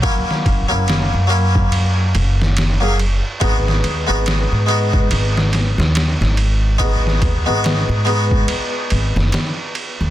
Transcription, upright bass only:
X:1
M:4/4
L:1/16
Q:"Swing 16ths" 1/4=71
K:G#m
V:1 name="Upright bass" clef=bass
z2 F,,, F,,,2 F,,4- F,, F,,,4- F,,, z | G,,,2 D,, G,,,2 G,,3 G,,,3 D,,2 G,,,3- | G,,,2 D,, G,,,2 G,,3 z2 G,,, F,,, z3 D,, |]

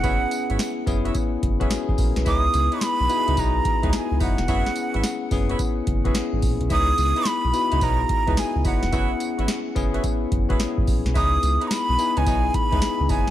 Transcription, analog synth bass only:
X:1
M:4/4
L:1/16
Q:"Swing 16ths" 1/4=108
K:C#dor
V:1 name="Analog synth bass" clef=bass
F,,, z2 G,,, z2 F,,,2 z2 F,,,2 z G,,, A,,, B,,, | C,,2 C,, z2 B,,, z C,, B,,,2 z C,, z C,, F,,, E,,, | F,,, z2 G,,, z2 F,,,2 z2 F,,,2 z G,,, A,,, B,,, | C,,2 C,, z2 B,,, z C,, B,,,2 z C,, z C,, F,,, E,,, |
F,,, z2 G,,, z2 F,,,2 z2 F,,,2 z G,,, A,,, B,,, | C,,2 C,, z2 B,,, z C,, B,,,2 z C,, z C,, F,,, z |]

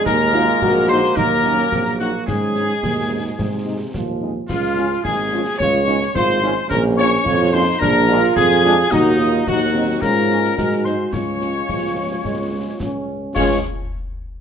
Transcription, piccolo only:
X:1
M:2/4
L:1/8
Q:1/4=108
K:Db
V:1 name="Piccolo"
b3 c' | b3 g | a4- | a2 z2 |
f2 a2 | d'2 c'2 | b d'2 c' | b2 a2 |
e2 g2 | b3 c' | d'4- | d'3 z |
d' z3 |]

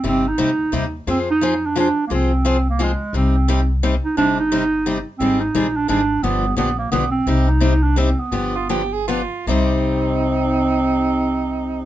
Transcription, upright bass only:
X:1
M:3/4
L:1/8
Q:"Swing" 1/4=174
K:Cm
V:1 name="Upright bass" clef=bass
G,,,2 D,,2 E,,2 | F,,6 | C,,6 | C,,6 |
G,,,6 | A,,,2 B,,,2 A,,,2 | G,,,2 ^A,,,2 =B,,,2 | C,,6 |
G,,,6 | C,,6- | C,,6 |]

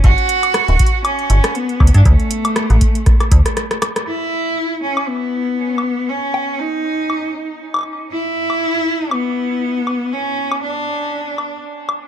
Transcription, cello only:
X:1
M:4/4
L:1/16
Q:"Swing 16ths" 1/4=119
K:D
V:1 name="Cello"
F8 C4 B,3 D | A,12 z4 | E6 C2 B,8 | C4 ^D8 z4 |
E8 B,8 | C4 D8 z4 |]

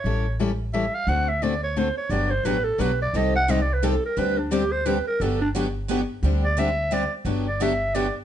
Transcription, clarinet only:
X:1
M:3/4
L:1/8
Q:"Swing" 1/4=174
K:G
V:1 name="Clarinet"
^c2 z2 e =f | f e d ^c =c ^c | d c B A B d | _e f (3e d B A _B |
B D G c B _B | A D z4 | z d e2 d z | z d e2 d z |]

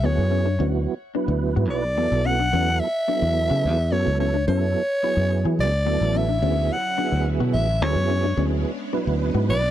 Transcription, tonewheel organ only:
X:1
M:7/8
L:1/16
Q:1/4=108
K:Bdor
V:1 name="Tonewheel organ"
[F,B,EG]4 [F,B,EF]2 z2 [F,B,EB]4- [F,B,EB] z | [F,B,EA]4 [F,B,EA]2 z2 [F,B,EA]4- [F,B,EA] z | [F,B,EA]4 [F,B,EA]2 z2 [F,B,EG]4- [F,B,EG] z | [F,B,EA]4 [F,B,EG]2 z2 [F,B,EG]4- [F,B,EG] z |
[F,B,EG]4 [F,B,EG]2 z2 [F,B,EB]4- [F,B,EB] z |]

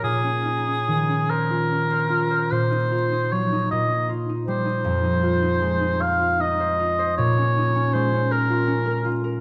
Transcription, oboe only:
X:1
M:6/8
L:1/8
Q:3/8=51
K:Bbm
V:1 name="Oboe"
A3 B3 | c2 d e z c- | c3 f e2 | d2 c B2 z |]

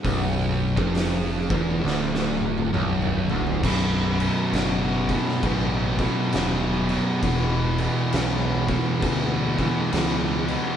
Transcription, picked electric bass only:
X:1
M:4/4
L:1/16
Q:"Swing" 1/4=67
K:Bm
V:1 name="Picked electric bass" clef=bass
B,,,,3 ^E,,,3 =E,,,2 D,,,4 B,,,,2 D,,,2 | B,,,,4 F,,,4 A,,,4 ^D,,,4 | E,,,4 B,,,4 D,,4 C,,4 |]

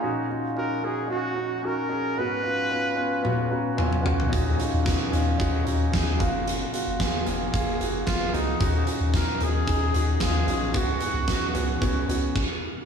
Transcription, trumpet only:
X:1
M:4/4
L:1/8
Q:1/4=112
K:Ebm
V:1 name="Trumpet"
E z B A G2 B2 | c6 z2 | z8 | z6 F E- |
E z B A3 A2 | G6 z2 |]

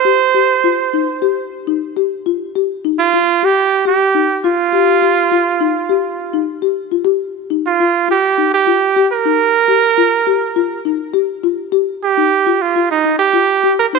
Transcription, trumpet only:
X:1
M:4/4
L:1/16
Q:"Swing 16ths" 1/4=103
K:Eb
V:1 name="Trumpet"
c8- c2 z6 | z4 F3 G3 G4 F2- | F12 z4 | z4 F3 G3 G4 B2- |
B8- B2 z6 | z2 G4 F2 E2 G4 B c |]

